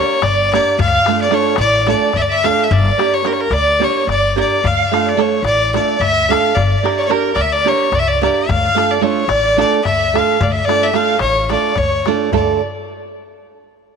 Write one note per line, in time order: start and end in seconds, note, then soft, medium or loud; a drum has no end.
0.00 0.18 A#3 medium
0.00 0.19 D4 medium
0.00 0.19 G4 medium
0.00 0.19 A#4 medium
0.00 0.24 C#5 loud
0.00 0.27 C#5 medium
0.09 darbuka tek soft
0.22 0.57 G1 loud
0.22 0.53 D5 loud
0.22 0.55 D5 loud
0.22 darbuka tek loud
0.22 darbuka dum medium
0.53 0.75 A#3 medium
0.53 0.75 D4 medium
0.53 0.76 G4 medium
0.53 0.76 A#4 medium
0.53 0.77 D5 loud
0.53 0.79 D5 medium
0.53 darbuka tek medium
0.66 darbuka tek soft
0.79 0.96 D2 loud
0.79 1.18 F5 loud
0.79 darbuka dum loud
0.93 darbuka tek soft
1.06 1.29 A3 medium
1.06 1.30 D4 soft
1.06 1.30 F4 medium
1.06 1.30 A4 medium
1.06 darbuka tek loud
1.21 1.34 D5 medium
1.21 1.35 D5 medium
1.31 1.54 A3 medium
1.31 1.54 D4 medium
1.31 1.54 F4 medium
1.31 1.55 A4 medium
1.31 1.57 C#5 medium
1.31 1.59 C#5 medium
1.31 darbuka tek medium
1.43 darbuka tek soft
1.56 1.92 A1 loud
1.56 1.86 D5 medium
1.56 1.88 D5 loud
1.56 darbuka tek loud
1.87 2.10 A3 medium
1.87 2.10 D4 medium
1.87 2.10 F4 medium
1.87 2.11 A4 medium
1.87 2.18 D5 loud
1.87 2.16 D5 loud
1.87 darbuka tek medium
2.00 darbuka tek soft
2.13 2.50 D2 loud
2.13 2.21 E5 medium
2.13 2.23 E5 loud
2.13 darbuka tek medium
2.13 darbuka dum medium
2.19 2.30 D5 medium
2.19 2.33 D5 medium
2.29 2.45 E5 loud
2.29 2.47 E5 loud
2.44 2.67 A3 medium
2.44 2.67 D4 medium
2.44 2.67 F4 medium
2.44 2.68 A4 medium
2.44 2.65 F5 medium
2.44 2.65 F5 loud
2.44 darbuka tek medium
2.58 darbuka tek soft
2.63 2.73 E5 medium
2.63 2.75 E5 medium
2.71 2.88 G1 loud
2.71 3.14 D5 medium
2.71 3.15 D5 loud
2.71 darbuka dum medium
2.85 darbuka tek soft
2.98 3.20 A#3 medium
2.98 3.21 D4 medium
2.98 3.21 G4 medium
2.98 3.21 A#4 medium
2.98 darbuka tek medium
3.11 3.28 C#5 medium
3.11 darbuka tek soft
3.24 3.46 A#3 medium
3.24 3.46 D4 medium
3.24 3.47 G4 medium
3.24 3.47 A#4 loud
3.24 3.32 A#4 medium
3.24 3.34 A#4 medium
3.24 darbuka tek medium
3.31 3.40 C#5 medium
3.31 3.42 C#5 medium
3.39 3.52 A#4 medium
3.39 3.55 A#4 loud
3.50 3.85 D2 loud
3.50 3.83 D5 medium
3.50 3.85 D5 loud
3.50 darbuka tek medium
3.66 darbuka tek soft
3.80 4.02 A#3 medium
3.80 4.03 D4 medium
3.80 4.03 G4 medium
3.80 4.03 A#4 medium
3.80 4.07 C#5 medium
3.80 darbuka tek medium
3.84 4.09 C#5 loud
3.95 darbuka tek soft
4.07 4.41 G1 loud
4.07 4.36 D5 loud
4.07 4.37 D5 loud
4.07 darbuka tek medium
4.07 darbuka dum medium
4.23 darbuka tek soft
4.36 4.59 A#3 medium
4.36 4.59 D4 medium
4.36 4.59 G4 medium
4.36 4.60 A#4 medium
4.36 4.64 D5 medium
4.36 darbuka tek medium
4.40 4.68 D5 loud
4.52 darbuka tek soft
4.62 4.81 D2 loud
4.62 5.07 F5 loud
4.62 darbuka dum medium
4.66 5.10 F5 medium
4.79 darbuka tek soft
4.92 5.13 A3 medium
4.92 5.14 D4 medium
4.92 5.14 F4 medium
4.92 5.14 A4 medium
4.92 darbuka tek medium
5.05 5.20 D5 medium
5.05 5.22 D5 medium
5.17 5.39 A3 medium
5.17 5.39 D4 medium
5.17 5.39 F4 medium
5.17 5.40 A4 medium
5.17 5.44 C#5 medium
5.17 5.45 C#5 medium
5.17 darbuka tek medium
5.33 darbuka tek soft
5.43 5.77 A1 loud
5.43 5.73 D5 loud
5.43 darbuka tek medium
5.74 5.96 A3 medium
5.74 5.96 D4 medium
5.74 5.96 F4 medium
5.74 5.97 A4 medium
5.74 6.03 D5 medium
5.74 6.01 D5 medium
5.74 darbuka tek medium
5.87 darbuka tek soft
6.00 6.34 D2 medium
6.00 6.33 E5 loud
6.00 6.32 E5 loud
6.00 darbuka tek medium
6.00 darbuka dum medium
6.29 6.51 A3 medium
6.29 6.52 D4 medium
6.29 6.52 F4 medium
6.29 6.53 A4 medium
6.29 6.56 F5 loud
6.29 6.59 F5 medium
6.29 darbuka tek medium
6.44 darbuka tek soft
6.55 6.74 G1 loud
6.55 7.00 D5 medium
6.55 6.99 D5 loud
6.55 darbuka dum loud
6.71 darbuka tek soft
6.83 7.05 A#3 medium
6.83 7.06 D4 medium
6.83 7.06 G4 medium
6.83 7.06 A#4 medium
6.83 darbuka tek medium
6.98 7.00 C#5 medium
6.98 7.01 C#5 medium
6.98 7.06 D5 medium
6.98 7.07 D5 medium
7.04 7.12 C#5 medium
7.09 7.31 A#3 medium
7.09 7.31 D4 medium
7.09 7.32 G4 medium
7.09 7.36 A#4 medium
7.09 7.32 A#4 medium
7.09 7.36 A#4 medium
7.09 darbuka tek medium
7.34 7.70 D2 loud
7.34 7.43 D5 loud
7.34 7.43 D5 medium
7.34 darbuka tek medium
7.41 7.54 E5 medium
7.52 7.70 D5 loud
7.52 7.70 D5 medium
7.65 7.87 A#3 medium
7.65 7.88 D4 medium
7.65 7.88 G4 medium
7.65 7.88 A#4 medium
7.65 7.96 C#5 loud
7.65 7.95 C#5 medium
7.65 darbuka tek medium
7.80 darbuka tek soft
7.92 8.26 C#2 loud
7.92 8.02 D5 loud
7.92 8.00 D5 loud
7.92 darbuka tek medium
7.92 darbuka dum medium
7.99 8.09 E5 loud
7.99 8.13 E5 medium
8.08 8.22 D5 loud
8.08 8.24 D5 loud
8.22 8.44 A#3 medium
8.22 8.44 D4 medium
8.22 8.45 G4 medium
8.22 8.45 A#4 medium
8.22 8.51 D5 medium
8.22 8.52 D5 medium
8.22 darbuka tek medium
8.36 darbuka tek soft
8.49 8.66 D2 loud
8.49 8.92 F5 medium
8.49 8.95 F5 loud
8.49 darbuka dum medium
8.64 darbuka tek soft
8.75 8.97 A3 medium
8.75 8.97 D4 soft
8.75 8.98 F4 medium
8.75 8.98 A4 medium
8.75 darbuka tek medium
8.91 9.05 D5 medium
8.91 9.06 D5 medium
9.01 9.23 A3 medium
9.01 9.24 D4 medium
9.01 9.24 F4 medium
9.01 9.24 A4 medium
9.01 9.31 C#5 medium
9.01 darbuka tek medium
9.28 9.62 A1 medium
9.28 9.59 D5 loud
9.28 darbuka tek loud
9.57 9.79 A3 medium
9.57 9.80 D4 medium
9.57 9.80 F4 medium
9.57 9.80 A4 medium
9.57 9.83 D5 loud
9.57 darbuka tek medium
9.62 9.84 D5 medium
9.85 10.19 D2 medium
9.85 10.19 E5 loud
9.85 10.20 E5 loud
9.85 darbuka tek medium
9.85 darbuka dum medium
10.14 10.36 A3 medium
10.14 10.36 D4 medium
10.14 10.37 F4 medium
10.14 10.37 A4 medium
10.14 darbuka tek medium
10.18 10.44 F5 medium
10.18 10.43 F5 medium
10.28 darbuka tek soft
10.41 10.58 D2 loud
10.41 10.52 D5 medium
10.41 10.53 D5 medium
10.41 darbuka dum loud
10.50 10.65 E5 medium
10.50 10.67 E5 medium
10.55 darbuka tek soft
10.64 10.90 A3 medium
10.64 10.84 D5 loud
10.64 10.85 D5 loud
10.68 10.90 D4 medium
10.68 10.91 F4 medium
10.68 10.91 A4 medium
10.68 darbuka tek medium
10.82 10.96 E5 medium
10.82 10.97 E5 loud
10.82 darbuka tek soft
10.93 11.15 A3 medium
10.93 11.16 D4 medium
10.93 11.16 F4 medium
10.93 11.16 A4 medium
10.93 11.19 F5 medium
10.93 11.20 F5 medium
10.93 darbuka tek medium
11.19 11.54 A1 loud
11.19 11.48 C#5 medium
11.19 11.48 C#5 loud
11.19 darbuka tek medium
11.35 darbuka tek soft
11.49 11.72 A3 medium
11.49 11.72 D4 soft
11.49 11.73 F4 medium
11.49 11.73 A4 medium
11.49 11.77 D5 medium
11.49 11.79 D5 medium
11.49 darbuka tek medium
11.63 darbuka tek soft
11.75 12.11 D2 medium
11.75 12.09 C#5 loud
11.75 12.09 C#5 medium
11.75 darbuka tek medium
11.75 darbuka dum medium
11.90 darbuka tek soft
12.06 12.29 A3 medium
12.06 12.29 D4 medium
12.06 12.29 F4 medium
12.06 12.29 A4 medium
12.06 12.33 D5 medium
12.06 darbuka tek medium
12.19 darbuka tek soft
12.32 12.59 D2 loud
12.32 12.59 A3 medium
12.32 12.59 D4 medium
12.32 12.59 F4 medium
12.32 12.59 A4 medium
12.32 12.60 D5 medium
12.32 darbuka dum medium